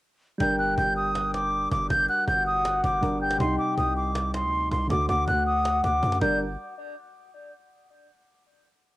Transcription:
0.38 808-style bass G1, synth keys G3 D4, soft synth lead G5, flute G6, cajon bass
0.42 synth keys A#4
0.59 flute F#6, cajon slap
0.78 808-style bass G1, flute G6, cajon bass
0.87 cajon slap
0.97 flute D#6, cajon slap
1.15 cajon slap
1.34 flute D6, cajon slap
1.53 cajon slap
1.71 808-style bass G1, flute D6, cajon bass
1.78 cajon slap
1.84 cajon slap
1.90 808-style bass G1, flute G6, cajon bass
2.09 soft synth lead F#5, flute F#6, cajon slap
2.28 808-style bass G1, flute G6, cajon bass
2.47 flute D#6, cajon slap
2.51 cajon slap
2.56 cajon slap
2.61 cajon slap
2.65 cajon slap
2.84 808-style bass G1, flute D6, cajon bass
3.01 808-style bass G1, synth keys G3 D4 A#4, cajon bass
3.09 cajon slap
3.15 cajon slap
3.21 soft synth lead G5, flute G6
3.31 cajon slap
3.38 808-style bass C2, synth keys C3 G3, soft synth lead G5, flute C6, cajon bass
3.43 synth keys D#4
3.59 flute D6, cajon slap
3.78 808-style bass C2, flute D#6, cajon bass
3.96 flute D6, cajon slap
4.15 cajon slap
4.34 flute C6, cajon slap
4.43 808-style bass D2
4.53 cajon slap
4.71 808-style bass C2, flute C6, cajon bass
4.78 cajon slap
4.84 synth keys D3, cajon slap
4.89 808-style bass D2, synth keys A3 F#4, flute D6, cajon bass
5.09 808-style bass D2, soft synth lead F#5, flute D6, cajon bass
5.28 808-style bass D2, flute F#6, cajon bass
5.34 cajon slap
5.46 flute D#6, cajon slap
5.53 cajon slap
5.56 cajon slap
5.59 cajon slap
5.65 cajon slap
5.84 808-style bass D2, flute D6, cajon bass
6.03 808-style bass F#2, cajon bass
6.12 cajon slap
6.21 808-style bass G1, synth keys G3 D4 A#4, soft synth lead D5, flute G6, cajon bass

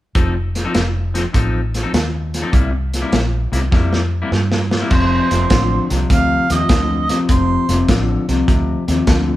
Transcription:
0.15 fingered electric bass F1, clean electric guitar F3 C4 D#4 A4, kick, closed hi-hat
0.35 muted clean electric guitar stroke
0.55 snare, closed hi-hat
0.65 clean electric guitar F3 C4 D#4 A4
0.75 fingered electric bass F1, snare, closed hi-hat
1.14 clean electric guitar F3 C4 D#4 A4, snare, closed hi-hat
1.24 muted clean electric guitar stroke
1.33 fingered electric bass A1, clean electric guitar F3 C4 D#4 A4, kick, closed hi-hat
1.74 snare, closed hi-hat
1.83 clean electric guitar F3 C4 D#4 A4
1.93 fingered electric bass D#2, muted clean electric guitar stroke, snare, closed hi-hat
2.34 snare, closed hi-hat
2.42 clean electric guitar F3 C4 D#4 A4
2.52 fingered electric bass C2, clean electric guitar C3 G3 A#3 E4, kick, closed hi-hat
2.72 muted clean electric guitar stroke
2.94 snare, closed hi-hat
3.02 clean electric guitar C3 G3 A#3 E4
3.12 fingered electric bass A#1, snare, closed hi-hat
3.52 fingered electric bass C2, clean electric guitar C3 G3 A#3 E4, snare, closed hi-hat
3.62 muted clean electric guitar stroke
3.71 fingered electric bass F2, clean electric guitar C3 G3 A#3 E4, kick, snare
3.93 snare
4.22 clean electric guitar C3 G3 A#3 E4
4.32 fingered electric bass G2, muted clean electric guitar stroke, snare
4.52 snare
4.71 snare
4.81 clean electric guitar C3 G3 A#3 E4
4.90 fingered electric bass F1, clean electric guitar F2 C3, harmonica C5, kick, snare, crash
5.31 fingered electric bass F1, clean electric guitar F2 C3, snare, closed hi-hat
5.50 fingered electric bass A1, clean electric guitar F2 D3, kick, snare, closed hi-hat
5.90 fingered electric bass C2, clean electric guitar F2 C3, snare, closed hi-hat
6.10 fingered electric bass D2, clean electric guitar F2 C3, harmonica F5, kick, snare, closed hi-hat
6.50 fingered electric bass D#2, clean electric guitar F2 C3, harmonica D#5, snare, closed hi-hat
6.69 fingered electric bass D2, clean electric guitar F2 D3, kick, snare, closed hi-hat
7.09 clean electric guitar F2 C3, harmonica D#5, snare, closed hi-hat
7.29 fingered electric bass F1, clean electric guitar F2 C3, harmonica C5, kick, snare, closed hi-hat
7.69 fingered electric bass F1, clean electric guitar F2 C3, snare, closed hi-hat
7.88 fingered electric bass A1, clean electric guitar F2 D3, kick, snare, closed hi-hat
8.29 fingered electric bass C2, clean electric guitar F2 C3, snare, closed hi-hat
8.48 fingered electric bass D2, clean electric guitar F2 C3, kick, snare, closed hi-hat
8.88 fingered electric bass D#2, clean electric guitar F2 C3, snare, closed hi-hat
9.07 fingered electric bass D2, clean electric guitar F2 D3, kick, snare, closed hi-hat

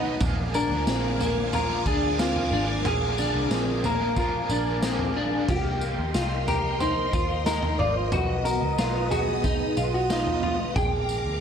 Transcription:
Already playing: picked electric bass B1, overdriven electric guitar F#3 B3 D#4 B4, string machine B3 D#5 F#5 D#6, clean electric guitar D#4
0.20 picked electric bass A#1, overdriven electric guitar A#2 D3 F3 A#3, string machine A#4 F5 G#5 D6, kick, floor tom, tambourine
0.24 overdriven electric guitar D4 G#4
0.54 clean electric guitar D4 A#4, tambourine
0.71 picked electric bass D2
0.87 picked electric bass A#1, clean electric guitar C4, snare, tambourine
1.20 clean electric guitar A#3, floor tom, tambourine
1.52 overdriven electric guitar F3 A#3 D4 G#4, clean electric guitar F4 A#4, floor tom, tambourine
1.86 picked electric bass D2, clean electric guitar D4 G#4, kick, tambourine
2.18 overdriven electric guitar F3 A#3 D4 G#4, clean electric guitar C4 F4, snare, tambourine
2.36 floor tom
2.51 picked electric bass G#1, clean electric guitar D4
2.84 picked electric bass A#1, overdriven electric guitar A#2 D3 F3 A#3 D4 G#4, clean electric guitar G#4, floor tom, tambourine
3.18 clean electric guitar D4, tambourine
3.34 picked electric bass C2
3.51 picked electric bass A#1, clean electric guitar C4, snare, tambourine
3.83 overdriven electric guitar F3 A#3 D4 G#4, clean electric guitar A#3 A#4, floor tom, tambourine
4.16 overdriven electric guitar F3 A#3 D4 G#4, clean electric guitar F4 A#4, kick, floor tom, tambourine
4.50 picked electric bass A#1, clean electric guitar D4, tambourine
4.82 overdriven electric guitar F3 A#3 D4 G#4, clean electric guitar C4, snare, tambourine
4.99 floor tom
5.17 clean electric guitar D4
5.49 picked electric bass C2, clean electric guitar G4, string machine A#4 D#5 G5 C6, kick, floor tom, crash, tambourine
5.81 tambourine
5.98 picked electric bass D#2
6.14 picked electric bass C2, clean electric guitar F4, snare, tambourine
6.48 clean electric guitar G4 A#4, floor tom, tambourine
6.80 clean electric guitar D#4 C5, floor tom, tambourine
7.13 picked electric bass D#2, clean electric guitar F4, kick, tambourine
7.46 clean electric guitar D#4 A#4, snare, tambourine
7.63 floor tom
7.79 picked electric bass G#1, clean electric guitar F4 D5, floor tom
7.95 clean electric guitar C5
8.12 picked electric bass B1, string machine B3 D#6, clean electric guitar F#4 B4, floor tom, tambourine
8.45 clean electric guitar A#4, tambourine
8.62 picked electric bass C#2
8.78 picked electric bass B1, clean electric guitar F4, snare, tambourine
9.11 clean electric guitar F#4 G#4, floor tom, tambourine
9.44 clean electric guitar D#4, kick, floor tom, tambourine
9.77 picked electric bass B1, clean electric guitar F4, tambourine
9.94 clean electric guitar F#4
10.10 clean electric guitar D#4 F4, snare, tambourine
10.27 floor tom
10.43 clean electric guitar F4, floor tom
10.76 picked electric bass A#1, clean electric guitar G#4 G5, string machine A#4 F5 A#5 D6, kick, floor tom, tambourine
11.09 tambourine
11.26 picked electric bass D2

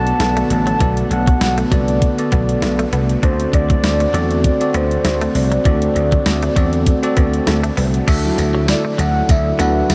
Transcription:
Already playing: slap bass B1, analog synth pad D3 A3 B3, tine electric piano B3 F#4 A4 D5, soft synth lead A5
0.07 closed hi-hat
0.20 slap bass B1, snare, closed hi-hat
0.37 clean electric guitar A3, closed hi-hat
0.50 slap bass A1, soft synth lead A5, muted clean electric guitar stroke, closed hi-hat
0.67 clean electric guitar F#3, closed hi-hat
0.80 slap bass B1, clean electric guitar E3, tine electric piano B3 F#4 A4 D5, kick, closed hi-hat
0.97 closed hi-hat
1.11 slap bass B1, soft synth lead F#5, muted clean electric guitar stroke, closed hi-hat
1.27 clean electric guitar F#3, kick, closed hi-hat
1.41 slap bass B1, soft synth lead F#5, muted clean electric guitar stroke, snare, closed hi-hat
1.58 clean electric guitar A3, closed hi-hat
1.71 slap bass C2, clean electric guitar F#3, tine electric piano B3 F#4 A4 D5, soft synth lead D5, kick, closed hi-hat
1.88 closed hi-hat
2.02 kick, closed hi-hat
2.18 tine electric piano B3 F#4 A4 D5, closed hi-hat
2.32 slap bass B1, clean electric guitar B3, kick, closed hi-hat
2.49 closed hi-hat
2.62 slap bass B1, muted clean electric guitar stroke, snare, closed hi-hat
2.79 clean electric guitar A3, closed hi-hat
2.93 slap bass C2, clean electric guitar B3, closed hi-hat
3.09 closed hi-hat
3.22 slap bass D2, analog synth pad A3 C4 F#4, tine electric piano C4 F#4 A4 D5, clean electric guitar D4, soft synth lead C5, kick, closed hi-hat
3.40 closed hi-hat
3.53 slap bass D2, soft synth lead D5, muted clean electric guitar stroke, kick, closed hi-hat
3.70 clean electric guitar F#3, kick, closed hi-hat
3.83 slap bass D2, muted clean electric guitar stroke, snare, closed hi-hat
4.00 clean electric guitar A3, closed hi-hat
4.13 slap bass E2, clean electric guitar F#3, tine electric piano C4 F#4 A4 D5, closed hi-hat
4.31 closed hi-hat
4.44 soft synth lead D5, kick, closed hi-hat
4.60 tine electric piano C4 F#4 A4 D5, closed hi-hat
4.74 slap bass D2, clean electric guitar B3, soft synth lead C5, closed hi-hat
4.91 closed hi-hat
5.05 slap bass D2, snare, closed hi-hat
5.21 clean electric guitar A3, closed hi-hat
5.35 slap bass C2, soft synth lead D5, muted clean electric guitar stroke, open hi-hat
5.52 clean electric guitar F#3, closed hi-hat
5.65 slap bass D2, clean electric guitar E3, tine electric piano C4 F#4 A4 D5, kick, closed hi-hat
5.82 closed hi-hat
5.96 slap bass D2, muted clean electric guitar stroke, closed hi-hat
6.12 clean electric guitar F#3, kick, closed hi-hat
6.26 slap bass D2, muted clean electric guitar stroke, snare, closed hi-hat
6.42 clean electric guitar A3, closed hi-hat
6.56 slap bass E2, clean electric guitar F#3, tine electric piano C4 F#4 A4 D5, kick, closed hi-hat
6.73 closed hi-hat
6.86 kick, closed hi-hat
7.03 tine electric piano C4 F#4 A4 D5, closed hi-hat
7.17 slap bass D2, clean electric guitar B3, kick, closed hi-hat
7.34 closed hi-hat
7.47 slap bass D2, muted clean electric guitar stroke, snare, closed hi-hat
7.64 clean electric guitar A3, closed hi-hat
7.77 slap bass C2, clean electric guitar B3, open hi-hat
7.94 closed hi-hat
8.07 slap bass D2, analog synth pad D3 F#3 A3 E4, tine electric piano D4 F#4 A4 E5, clean electric guitar D4, kick, closed hi-hat, crash, tambourine
8.24 analog polysynth F#3 E4 A4
8.38 slap bass D2, muted clean electric guitar stroke, closed hi-hat, tambourine
8.55 clean electric guitar F#3
8.68 analog polysynth F#3 E4 A4, soft synth lead D5, muted clean electric guitar stroke, snare, closed hi-hat, tambourine
8.85 clean electric guitar A3
8.98 slap bass D2, clean electric guitar F#3, soft synth lead F#5, closed hi-hat, tambourine
9.29 slap bass D2, soft synth lead E5, kick, closed hi-hat, tambourine
9.59 slap bass D2, clean electric guitar B3, tine electric piano D4 F#4 A4 B4, soft synth lead F#5, closed hi-hat, tambourine
9.89 slap bass D2, analog polysynth F#3 E4 A4, snare, closed hi-hat, tambourine

